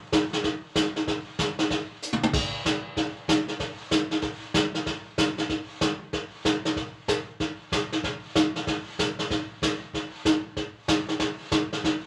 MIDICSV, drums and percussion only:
0, 0, Header, 1, 2, 480
1, 0, Start_track
1, 0, Tempo, 316456
1, 1626, Time_signature, 4, 2, 24, 8
1, 18300, End_track
2, 0, Start_track
2, 0, Title_t, "Drums"
2, 189, Note_on_c, 9, 36, 23
2, 190, Note_on_c, 9, 38, 72
2, 190, Note_on_c, 9, 44, 67
2, 340, Note_off_c, 9, 36, 0
2, 342, Note_off_c, 9, 38, 0
2, 342, Note_off_c, 9, 44, 0
2, 499, Note_on_c, 9, 38, 44
2, 651, Note_off_c, 9, 38, 0
2, 665, Note_on_c, 9, 25, 43
2, 665, Note_on_c, 9, 38, 44
2, 667, Note_on_c, 9, 36, 18
2, 816, Note_off_c, 9, 38, 0
2, 819, Note_off_c, 9, 36, 0
2, 1145, Note_on_c, 9, 38, 71
2, 1145, Note_on_c, 9, 44, 69
2, 1147, Note_on_c, 9, 36, 24
2, 1297, Note_off_c, 9, 38, 0
2, 1297, Note_off_c, 9, 44, 0
2, 1298, Note_off_c, 9, 36, 0
2, 1457, Note_on_c, 9, 38, 45
2, 1609, Note_off_c, 9, 38, 0
2, 1629, Note_on_c, 9, 36, 19
2, 1631, Note_off_c, 9, 25, 0
2, 1631, Note_on_c, 9, 25, 52
2, 1631, Note_on_c, 9, 38, 47
2, 1780, Note_off_c, 9, 36, 0
2, 1783, Note_off_c, 9, 38, 0
2, 2105, Note_on_c, 9, 38, 70
2, 2105, Note_on_c, 9, 44, 58
2, 2107, Note_on_c, 9, 36, 24
2, 2256, Note_off_c, 9, 38, 0
2, 2256, Note_off_c, 9, 44, 0
2, 2258, Note_off_c, 9, 36, 0
2, 2408, Note_on_c, 9, 38, 50
2, 2559, Note_off_c, 9, 38, 0
2, 2584, Note_off_c, 9, 25, 0
2, 2584, Note_on_c, 9, 25, 48
2, 2584, Note_on_c, 9, 36, 21
2, 2584, Note_on_c, 9, 38, 47
2, 2735, Note_off_c, 9, 36, 0
2, 2735, Note_off_c, 9, 38, 0
2, 3068, Note_on_c, 9, 44, 58
2, 3219, Note_off_c, 9, 44, 0
2, 3227, Note_on_c, 9, 47, 62
2, 3379, Note_off_c, 9, 47, 0
2, 3387, Note_on_c, 9, 47, 82
2, 3539, Note_off_c, 9, 47, 0
2, 3541, Note_on_c, 9, 36, 69
2, 3542, Note_off_c, 9, 25, 0
2, 3542, Note_on_c, 9, 25, 45
2, 3542, Note_on_c, 9, 38, 40
2, 3542, Note_on_c, 9, 49, 71
2, 3693, Note_off_c, 9, 36, 0
2, 3694, Note_off_c, 9, 38, 0
2, 3694, Note_off_c, 9, 49, 0
2, 4021, Note_on_c, 9, 36, 22
2, 4028, Note_on_c, 9, 38, 68
2, 4028, Note_on_c, 9, 44, 57
2, 4173, Note_off_c, 9, 36, 0
2, 4180, Note_off_c, 9, 38, 0
2, 4180, Note_off_c, 9, 44, 0
2, 4499, Note_on_c, 9, 36, 20
2, 4502, Note_off_c, 9, 25, 0
2, 4502, Note_on_c, 9, 25, 43
2, 4502, Note_on_c, 9, 38, 43
2, 4651, Note_off_c, 9, 36, 0
2, 4654, Note_off_c, 9, 38, 0
2, 4978, Note_on_c, 9, 36, 22
2, 4987, Note_on_c, 9, 38, 73
2, 4987, Note_on_c, 9, 44, 67
2, 5130, Note_off_c, 9, 36, 0
2, 5138, Note_off_c, 9, 38, 0
2, 5138, Note_off_c, 9, 44, 0
2, 5280, Note_on_c, 9, 38, 36
2, 5431, Note_off_c, 9, 38, 0
2, 5454, Note_on_c, 9, 36, 19
2, 5456, Note_off_c, 9, 25, 0
2, 5456, Note_on_c, 9, 25, 45
2, 5456, Note_on_c, 9, 38, 40
2, 5606, Note_off_c, 9, 36, 0
2, 5608, Note_off_c, 9, 38, 0
2, 5932, Note_on_c, 9, 36, 17
2, 5935, Note_on_c, 9, 38, 59
2, 5935, Note_on_c, 9, 44, 55
2, 6084, Note_off_c, 9, 36, 0
2, 6086, Note_off_c, 9, 38, 0
2, 6086, Note_off_c, 9, 44, 0
2, 6233, Note_on_c, 9, 38, 39
2, 6385, Note_off_c, 9, 38, 0
2, 6399, Note_off_c, 9, 25, 0
2, 6399, Note_on_c, 9, 25, 53
2, 6399, Note_on_c, 9, 38, 41
2, 6408, Note_on_c, 9, 36, 23
2, 6550, Note_off_c, 9, 38, 0
2, 6560, Note_off_c, 9, 36, 0
2, 6890, Note_on_c, 9, 38, 77
2, 6890, Note_on_c, 9, 44, 71
2, 6892, Note_on_c, 9, 36, 29
2, 7041, Note_off_c, 9, 38, 0
2, 7041, Note_off_c, 9, 44, 0
2, 7044, Note_off_c, 9, 36, 0
2, 7197, Note_on_c, 9, 38, 36
2, 7349, Note_off_c, 9, 38, 0
2, 7375, Note_on_c, 9, 36, 21
2, 7377, Note_off_c, 9, 25, 0
2, 7377, Note_on_c, 9, 25, 41
2, 7377, Note_on_c, 9, 38, 40
2, 7527, Note_off_c, 9, 36, 0
2, 7528, Note_off_c, 9, 38, 0
2, 7855, Note_on_c, 9, 36, 21
2, 7856, Note_on_c, 9, 38, 66
2, 7856, Note_on_c, 9, 44, 55
2, 8006, Note_off_c, 9, 36, 0
2, 8008, Note_off_c, 9, 38, 0
2, 8008, Note_off_c, 9, 44, 0
2, 8161, Note_on_c, 9, 38, 38
2, 8313, Note_off_c, 9, 38, 0
2, 8331, Note_off_c, 9, 25, 0
2, 8331, Note_on_c, 9, 25, 48
2, 8331, Note_on_c, 9, 38, 37
2, 8334, Note_on_c, 9, 36, 22
2, 8483, Note_off_c, 9, 38, 0
2, 8485, Note_off_c, 9, 36, 0
2, 8815, Note_on_c, 9, 38, 74
2, 8815, Note_on_c, 9, 44, 58
2, 8816, Note_on_c, 9, 36, 24
2, 8967, Note_off_c, 9, 38, 0
2, 8967, Note_off_c, 9, 44, 0
2, 8968, Note_off_c, 9, 36, 0
2, 9298, Note_off_c, 9, 25, 0
2, 9298, Note_on_c, 9, 25, 42
2, 9298, Note_on_c, 9, 38, 45
2, 9299, Note_on_c, 9, 36, 19
2, 9450, Note_off_c, 9, 36, 0
2, 9450, Note_off_c, 9, 38, 0
2, 9780, Note_on_c, 9, 36, 20
2, 9784, Note_on_c, 9, 38, 63
2, 9784, Note_on_c, 9, 44, 53
2, 9932, Note_off_c, 9, 36, 0
2, 9936, Note_off_c, 9, 38, 0
2, 9936, Note_off_c, 9, 44, 0
2, 10089, Note_on_c, 9, 38, 40
2, 10241, Note_off_c, 9, 38, 0
2, 10259, Note_on_c, 9, 36, 22
2, 10264, Note_off_c, 9, 25, 0
2, 10264, Note_on_c, 9, 25, 40
2, 10264, Note_on_c, 9, 38, 38
2, 10411, Note_off_c, 9, 36, 0
2, 10416, Note_off_c, 9, 38, 0
2, 10741, Note_on_c, 9, 36, 19
2, 10744, Note_on_c, 9, 38, 78
2, 10744, Note_on_c, 9, 44, 66
2, 10893, Note_off_c, 9, 36, 0
2, 10896, Note_off_c, 9, 38, 0
2, 10896, Note_off_c, 9, 44, 0
2, 11226, Note_off_c, 9, 25, 0
2, 11226, Note_on_c, 9, 25, 45
2, 11226, Note_on_c, 9, 36, 20
2, 11226, Note_on_c, 9, 38, 39
2, 11377, Note_off_c, 9, 36, 0
2, 11377, Note_off_c, 9, 38, 0
2, 11709, Note_on_c, 9, 36, 26
2, 11716, Note_on_c, 9, 38, 66
2, 11716, Note_on_c, 9, 44, 59
2, 11861, Note_off_c, 9, 36, 0
2, 11867, Note_off_c, 9, 38, 0
2, 11867, Note_off_c, 9, 44, 0
2, 12019, Note_on_c, 9, 38, 44
2, 12170, Note_off_c, 9, 38, 0
2, 12187, Note_on_c, 9, 36, 20
2, 12194, Note_off_c, 9, 25, 0
2, 12194, Note_on_c, 9, 25, 43
2, 12194, Note_on_c, 9, 38, 45
2, 12339, Note_off_c, 9, 36, 0
2, 12345, Note_off_c, 9, 38, 0
2, 12671, Note_on_c, 9, 36, 20
2, 12673, Note_on_c, 9, 38, 75
2, 12673, Note_on_c, 9, 44, 73
2, 12823, Note_off_c, 9, 36, 0
2, 12825, Note_off_c, 9, 38, 0
2, 12825, Note_off_c, 9, 44, 0
2, 12978, Note_on_c, 9, 38, 35
2, 13130, Note_off_c, 9, 38, 0
2, 13152, Note_off_c, 9, 25, 0
2, 13152, Note_on_c, 9, 25, 45
2, 13152, Note_on_c, 9, 36, 25
2, 13152, Note_on_c, 9, 38, 43
2, 13303, Note_off_c, 9, 36, 0
2, 13304, Note_off_c, 9, 38, 0
2, 13632, Note_on_c, 9, 36, 18
2, 13638, Note_on_c, 9, 38, 67
2, 13638, Note_on_c, 9, 44, 61
2, 13784, Note_off_c, 9, 36, 0
2, 13789, Note_off_c, 9, 38, 0
2, 13789, Note_off_c, 9, 44, 0
2, 13937, Note_on_c, 9, 38, 42
2, 14089, Note_off_c, 9, 38, 0
2, 14112, Note_on_c, 9, 36, 24
2, 14116, Note_off_c, 9, 25, 0
2, 14116, Note_on_c, 9, 25, 45
2, 14116, Note_on_c, 9, 38, 43
2, 14264, Note_off_c, 9, 36, 0
2, 14268, Note_off_c, 9, 38, 0
2, 14592, Note_on_c, 9, 36, 27
2, 14601, Note_on_c, 9, 38, 69
2, 14601, Note_on_c, 9, 44, 58
2, 14744, Note_off_c, 9, 36, 0
2, 14753, Note_off_c, 9, 38, 0
2, 14753, Note_off_c, 9, 44, 0
2, 15070, Note_on_c, 9, 36, 19
2, 15082, Note_off_c, 9, 25, 0
2, 15082, Note_on_c, 9, 25, 50
2, 15082, Note_on_c, 9, 38, 41
2, 15222, Note_off_c, 9, 36, 0
2, 15234, Note_off_c, 9, 38, 0
2, 15549, Note_on_c, 9, 36, 24
2, 15553, Note_on_c, 9, 38, 70
2, 15553, Note_on_c, 9, 44, 59
2, 15701, Note_off_c, 9, 36, 0
2, 15704, Note_off_c, 9, 38, 0
2, 15704, Note_off_c, 9, 44, 0
2, 16026, Note_off_c, 9, 25, 0
2, 16026, Note_on_c, 9, 25, 45
2, 16026, Note_on_c, 9, 36, 22
2, 16026, Note_on_c, 9, 38, 41
2, 16178, Note_off_c, 9, 36, 0
2, 16178, Note_off_c, 9, 38, 0
2, 16505, Note_on_c, 9, 36, 24
2, 16507, Note_on_c, 9, 38, 83
2, 16507, Note_on_c, 9, 44, 61
2, 16657, Note_off_c, 9, 36, 0
2, 16659, Note_off_c, 9, 38, 0
2, 16659, Note_off_c, 9, 44, 0
2, 16814, Note_on_c, 9, 38, 40
2, 16966, Note_off_c, 9, 38, 0
2, 16980, Note_off_c, 9, 25, 0
2, 16980, Note_on_c, 9, 25, 46
2, 16980, Note_on_c, 9, 38, 40
2, 16983, Note_on_c, 9, 36, 17
2, 17132, Note_off_c, 9, 38, 0
2, 17135, Note_off_c, 9, 36, 0
2, 17467, Note_on_c, 9, 36, 29
2, 17469, Note_on_c, 9, 38, 73
2, 17469, Note_on_c, 9, 44, 48
2, 17619, Note_off_c, 9, 36, 0
2, 17620, Note_off_c, 9, 38, 0
2, 17620, Note_off_c, 9, 44, 0
2, 17786, Note_on_c, 9, 38, 41
2, 17938, Note_off_c, 9, 38, 0
2, 17954, Note_on_c, 9, 36, 19
2, 17963, Note_off_c, 9, 25, 0
2, 17963, Note_on_c, 9, 25, 43
2, 17963, Note_on_c, 9, 38, 47
2, 18106, Note_off_c, 9, 36, 0
2, 18115, Note_off_c, 9, 38, 0
2, 18300, Note_off_c, 9, 25, 0
2, 18300, End_track
0, 0, End_of_file